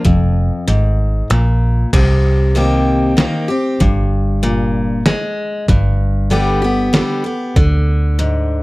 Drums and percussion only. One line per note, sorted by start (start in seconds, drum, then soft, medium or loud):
0.05 kick loud
0.05 closed hi-hat medium
0.68 closed hi-hat medium
1.31 finger snap medium
1.31 closed hi-hat medium
1.93 kick loud
1.93 closed hi-hat medium
1.93 crash loud
2.56 closed hi-hat medium
3.18 snare medium
3.18 closed hi-hat medium
3.81 kick loud
3.81 closed hi-hat medium
4.43 closed hi-hat medium
5.06 snare medium
5.06 closed hi-hat medium
5.68 kick loud
5.68 closed hi-hat medium
6.31 closed hi-hat medium
6.94 snare medium
6.94 closed hi-hat medium
7.56 kick loud
7.56 closed hi-hat medium
8.19 closed hi-hat medium